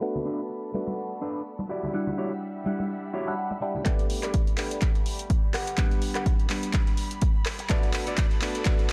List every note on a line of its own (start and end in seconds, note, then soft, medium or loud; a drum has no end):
0.00 0.71 A3 loud
0.00 0.71 B3 medium
0.00 0.72 D4 medium
0.00 1.69 D4 medium
0.00 0.72 F#4 loud
0.00 1.69 A4 medium
0.00 1.66 B5 medium
0.00 tambourine medium
0.16 tambourine soft
0.16 low conga medium
0.25 0.39 D4 loud
0.25 0.40 A4 loud
0.25 0.40 B4 loud
0.39 tambourine medium
0.50 muted clean electric guitar stroke soft
0.50 tambourine medium
0.64 tambourine soft
0.74 1.69 A3 medium
0.74 1.69 B3 medium
0.74 1.69 D4 medium
0.74 1.70 F#4 medium
0.74 high conga medium
0.87 muted clean electric guitar stroke medium
0.87 tambourine medium
0.87 high conga medium
0.97 muted clean electric guitar stroke soft
0.97 tambourine medium
1.11 tambourine soft
1.21 1.40 D4 loud
1.21 1.41 A4 loud
1.21 1.41 B4 loud
1.35 tambourine medium
1.46 tambourine medium
1.59 muted clean electric guitar stroke medium
1.59 tambourine soft
1.59 high conga medium
1.69 3.84 G3 medium
1.69 2.09 E4 medium
1.69 2.09 F#4 medium
1.69 2.10 G4 medium
1.69 2.10 D5 loud
1.69 3.84 E5 medium
1.69 3.84 F#5 medium
1.83 tambourine medium
1.83 high conga medium
1.83 low conga medium
1.93 2.63 G3 medium
1.93 2.63 D4 medium
1.93 2.64 E4 medium
1.93 2.64 F#5 loud
1.93 tambourine medium
2.07 tambourine soft
2.07 low conga medium
2.18 2.31 E4 loud
2.18 2.31 F#4 loud
2.18 2.32 G4 loud
2.18 2.32 C#5 loud
2.32 tambourine medium
2.42 muted clean electric guitar stroke soft
2.42 tambourine medium
2.56 tambourine soft
2.65 3.25 G3 medium
2.65 3.25 D4 medium
2.65 3.25 E4 medium
2.65 3.25 F#5 medium
2.65 high conga medium
2.79 muted clean electric guitar stroke medium
2.79 tambourine medium
2.79 high conga medium
2.90 muted clean electric guitar stroke soft
2.90 tambourine medium
3.04 tambourine soft
3.13 3.33 E4 loud
3.13 3.33 F#4 loud
3.13 3.33 G4 loud
3.13 3.33 C#5 loud
3.27 3.59 G3 medium
3.27 3.60 D4 medium
3.27 3.60 E4 medium
3.27 3.60 F#5 medium
3.27 tambourine medium
3.38 3.83 F#5 medium
3.38 tambourine medium
3.51 muted clean electric guitar stroke medium
3.51 tambourine soft
3.51 high conga medium
3.61 3.83 G3 medium
3.61 3.84 D4 medium
3.61 3.84 E4 medium
3.61 3.84 G4 medium
3.61 muted clean electric guitar stroke soft
3.75 tambourine medium
3.75 high conga medium
3.75 low conga medium
3.85 3.95 A1 loud
3.85 7.66 G3 medium
3.85 4.55 A3 loud
3.85 4.55 B3 medium
3.85 4.56 D4 medium
3.85 4.04 G4 loud
3.85 4.56 G4 loud
3.85 4.05 B4 loud
3.85 5.52 D5 medium
3.85 4.05 D5 loud
3.85 5.52 B5 medium
3.85 kick loud
3.85 clap soft
3.85 closed hi-hat medium
3.99 closed hi-hat soft
4.10 4.19 A1 medium
4.10 open hi-hat loud
4.22 4.31 G1 medium
4.22 4.40 G4 medium
4.22 4.41 B4 medium
4.22 4.41 D5 medium
4.22 cross-stick medium
4.22 clap soft
4.22 closed hi-hat medium
4.34 kick loud
4.34 closed hi-hat medium
4.47 closed hi-hat soft
4.57 4.67 E2 medium
4.57 5.52 A3 medium
4.57 5.53 B3 medium
4.57 5.53 D4 medium
4.57 5.53 G4 medium
4.57 muted clean electric guitar stroke soft
4.57 clap medium
4.57 open hi-hat loud
4.71 4.79 G1 medium
4.71 closed hi-hat medium
4.81 muted clean electric guitar stroke medium
4.81 kick loud
4.81 clap medium
4.81 closed hi-hat medium
4.94 muted clean electric guitar stroke soft
4.94 closed hi-hat soft
5.06 open hi-hat loud
5.19 closed hi-hat medium
5.30 kick loud
5.30 closed hi-hat medium
5.43 muted clean electric guitar stroke soft
5.53 6.02 G4 medium
5.53 6.02 B4 medium
5.53 6.02 F#5 loud
5.53 8.93 B5 medium
5.53 cross-stick medium
5.53 clap medium
5.53 open hi-hat loud
5.67 closed hi-hat medium
5.77 5.87 G1 loud
5.77 6.47 G3 loud
5.77 6.47 B3 medium
5.77 6.48 D4 medium
5.77 6.48 F#5 loud
5.77 kick loud
5.77 clap medium
5.77 closed hi-hat medium
5.91 closed hi-hat soft
6.02 6.11 G1 loud
6.02 open hi-hat loud
6.15 6.22 D2 medium
6.15 6.32 G4 medium
6.15 6.33 B4 medium
6.15 6.33 F#5 medium
6.15 cross-stick medium
6.15 clap medium
6.15 closed hi-hat medium
6.26 kick loud
6.26 closed hi-hat medium
6.40 closed hi-hat soft
6.49 6.59 D2 medium
6.49 7.67 G3 medium
6.49 7.67 B3 medium
6.49 7.68 D4 medium
6.49 muted clean electric guitar stroke soft
6.49 clap medium
6.49 open hi-hat loud
6.63 6.71 D2 medium
6.63 closed hi-hat medium
6.73 muted clean electric guitar stroke medium
6.73 kick loud
6.73 clap medium
6.73 closed hi-hat medium
6.87 muted clean electric guitar stroke soft
6.87 closed hi-hat soft
6.97 open hi-hat loud
7.11 muted fingered electric bass stroke soft
7.11 closed hi-hat medium
7.22 7.31 G2 medium
7.22 kick loud
7.22 closed hi-hat medium
7.35 muted clean electric guitar stroke soft
7.46 cross-stick medium
7.46 clap medium
7.46 open hi-hat loud
7.59 muted clean electric guitar stroke medium
7.59 closed hi-hat medium
7.69 8.39 A3 medium
7.69 8.39 B3 medium
7.69 8.40 D4 medium
7.69 8.40 F#4 loud
7.69 7.88 A4 loud
7.69 8.93 A4 medium
7.69 7.89 B4 loud
7.69 8.93 D5 medium
7.69 7.89 D5 loud
7.69 kick loud
7.69 clap medium
7.69 closed hi-hat medium
7.83 closed hi-hat soft
7.94 8.03 B1 loud
7.94 clap medium
7.94 open hi-hat loud
8.07 8.15 A1 medium
8.07 8.24 A4 medium
8.07 8.25 B4 medium
8.07 8.25 D5 loud
8.07 closed hi-hat soft
8.18 kick loud
8.18 clap medium
8.18 closed hi-hat medium
8.31 closed hi-hat soft
8.41 8.51 F#2 medium
8.41 8.64 A3 medium
8.41 8.64 B3 medium
8.41 8.64 D4 medium
8.41 8.65 F#4 medium
8.41 muted clean electric guitar stroke soft
8.41 clap medium
8.41 open hi-hat loud
8.55 8.63 A1 medium
8.55 closed hi-hat medium
8.65 8.93 A3 medium
8.65 8.93 B3 medium
8.65 8.93 D4 medium
8.65 8.93 F#4 loud
8.65 muted clean electric guitar stroke medium
8.65 kick loud
8.65 clap medium
8.65 closed hi-hat medium
8.79 muted clean electric guitar stroke soft
8.79 closed hi-hat soft